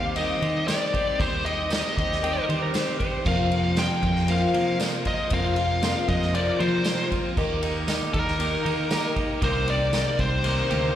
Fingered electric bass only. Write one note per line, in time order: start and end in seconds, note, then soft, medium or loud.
0.00 0.32 D#2 loud
0.42 0.63 D#3 loud
1.20 1.82 D#2 medium
1.97 2.39 D#2 loud
2.49 2.70 D#3 medium
3.26 3.88 F2 medium
4.03 4.44 F2 loud
4.54 4.75 F3 medium
5.31 5.93 F2 medium
6.08 6.50 F2 loud
6.60 6.81 F3 medium
7.37 7.99 D#2 loud
8.14 8.56 D#2 loud
8.65 8.86 D#3 loud
9.42 10.04 C2 loud
10.19 10.61 C2 loud
10.72 10.95 D2 medium